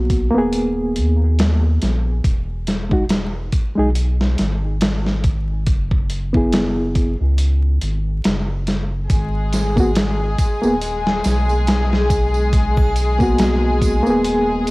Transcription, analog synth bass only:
0.00 0.30 B1 medium
0.35 0.98 D#1 loud
0.97 1.78 D#2 medium
1.83 2.20 A#1 medium
2.25 3.50 E1 loud
3.78 4.35 B1 loud
4.40 5.69 G#1 medium
5.67 7.15 F#1 medium
7.21 7.78 C#2 loud
7.82 8.20 G#1 medium
8.26 9.07 F#1 loud
9.10 10.35 G#1 loud
10.64 11.21 D#1 loud
11.25 14.02 B1 medium
14.07 14.69 D#1 loud

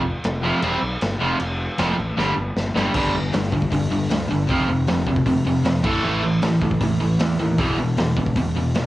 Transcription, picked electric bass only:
0.00 0.12 F1 medium
0.25 0.51 F1 medium
0.63 0.76 E1 medium
0.82 0.96 B1 medium
1.02 1.15 G1 medium
1.21 1.34 F1 loud
1.41 1.67 F1 medium
1.79 1.93 F1 medium
1.98 2.12 A1 medium
2.18 2.31 G1 medium
2.37 2.50 G1 medium
2.56 2.70 G1 medium
2.75 2.88 G1 medium
2.94 3.29 G1 medium
3.33 3.68 G1 medium
3.72 4.07 G1 medium
4.10 4.28 D2 medium
4.30 4.48 G1 medium
4.49 4.67 F1 medium
4.68 4.86 F1 loud
4.88 5.05 F1 medium
5.07 5.24 F1 medium
5.26 5.44 F1 medium
5.45 5.63 F1 loud
5.65 5.83 F2 loud
5.84 6.02 A1 medium
6.04 6.39 A1 medium
6.42 6.77 A1 medium
6.81 7.16 A1 medium
7.20 7.38 E2 medium
7.40 7.57 D#2 loud
7.58 7.76 E1 medium
7.78 7.96 E1 medium
7.98 8.15 E1 medium
8.17 8.34 E1 medium
8.36 8.53 E1 medium
8.56 8.73 E1 medium
8.75 8.86 E2 medium

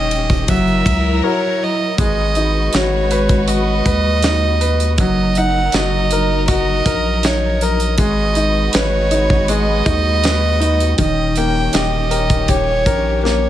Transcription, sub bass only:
0.00 0.50 D#1 medium
0.49 0.83 F#1 loud
0.86 1.22 C#2 medium
1.98 2.69 G#1 loud
2.74 3.82 G#1 medium
3.86 5.00 D#2 medium
4.98 5.70 F#1 loud
5.74 6.82 F#1 loud
6.86 8.00 A#1 medium
7.98 8.69 G#1 loud
8.75 9.83 G#1 medium
9.86 10.95 D#2 medium
10.98 11.69 D#1 loud
11.74 12.88 D#1 medium
12.86 13.49 A#1 medium

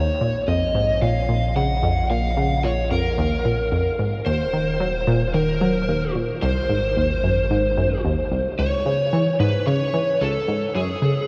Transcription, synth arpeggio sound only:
0.21 0.30 A#2 medium
0.48 0.64 F2 medium
0.75 0.91 G#2 medium
1.02 1.18 A#2 medium
1.29 1.53 A#2 medium
1.56 1.72 C#3 medium
1.83 1.99 F2 medium
2.10 2.34 A#2 medium
2.37 2.61 C#3 medium
2.64 2.80 A#2 medium
2.91 3.07 F2 medium
3.18 3.34 D#2 loud
3.45 3.55 A#2 medium
3.72 3.88 F2 medium
3.99 4.15 G#2 medium
4.26 4.42 D#2 medium
4.53 4.77 D#3 medium
4.80 4.96 F#3 medium
5.07 5.23 A#2 loud
5.34 5.58 D#3 medium
5.61 5.85 F#3 medium
5.88 6.04 D#2 medium
6.15 6.31 A#2 medium
6.42 6.58 C2 loud
6.69 6.79 G#2 medium
6.97 7.12 D#2 medium
7.24 7.39 F#2 medium
7.51 7.66 G#2 medium
7.78 7.93 F#2 medium
8.05 8.14 D#2 medium
8.32 8.41 C2 medium
8.59 8.74 C#2 medium
8.86 9.09 C#3 medium
9.13 9.29 E3 medium
9.40 9.56 G#2 loud
9.67 9.90 C#3 medium
9.94 10.18 E3 medium
10.21 10.37 C#2 medium
10.48 10.64 G#2 medium
10.75 10.91 F#2 loud
11.02 11.11 C#3 medium

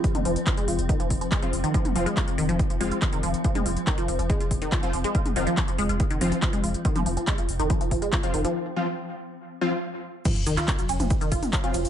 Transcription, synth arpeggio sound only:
0.15 0.19 D#3 loud
0.25 0.32 F3 loud
0.47 0.51 F3 medium
0.57 0.60 G#3 loud
0.68 0.72 F4 medium
0.89 0.93 D#3 loud
1.00 1.06 F3 loud
1.21 1.25 F3 medium
1.32 1.34 G#3 loud
1.42 1.47 F4 medium
1.64 1.68 D#3 loud
1.74 1.81 F3 loud
1.96 2.00 F3 medium
2.06 2.09 G#3 loud
2.17 2.21 F4 medium
2.38 2.42 D#3 loud
2.49 2.55 F3 loud
2.70 2.74 F3 medium
2.81 2.83 G#3 loud
2.91 2.96 F4 medium
3.13 3.17 D#3 loud
3.23 3.30 F3 loud
3.45 3.49 F3 medium
3.55 3.58 G#3 loud
3.66 3.70 F4 medium
3.87 3.91 D#3 loud
3.98 4.04 F3 loud
4.08 4.13 F3 medium
4.19 4.23 F3 medium
4.30 4.32 G#3 loud
4.40 4.45 F4 medium
4.62 4.66 D#3 loud
4.72 4.79 F3 loud
4.83 4.87 F3 medium
4.94 4.98 F3 medium
5.04 5.07 G#3 loud
5.15 5.19 F4 medium
5.36 5.40 D#3 loud
5.47 5.53 F3 loud
5.57 5.62 F3 medium
5.68 5.72 F3 medium
5.78 5.81 G#3 loud
5.89 5.94 F4 medium
6.11 6.15 D#3 loud
6.21 6.28 F3 loud
6.32 6.36 F3 medium
6.42 6.47 F3 medium
6.53 6.56 G#3 loud
6.64 6.68 F4 medium
6.85 6.89 D#3 loud
6.96 7.02 F3 loud
7.06 7.11 F3 medium
7.17 7.21 F3 medium
7.27 7.30 G#3 loud
7.38 7.42 F4 medium
7.59 7.64 D#3 loud
7.70 7.77 F3 loud
7.81 7.85 F3 medium
7.91 7.96 F3 medium
8.02 8.05 G#3 loud
8.13 8.17 F4 medium
8.34 8.38 D#3 medium
8.45 8.51 F3 loud
10.25 10.28 F3 medium
10.46 10.53 D#3 loud
10.57 10.64 F4 loud
10.79 10.83 F#3 medium
10.89 10.92 C#4 medium
11.00 11.02 F3 medium
11.21 11.28 D#3 loud
11.32 11.38 F4 loud
11.53 11.57 F#3 medium
11.64 11.66 C#4 medium
11.74 11.77 F3 medium

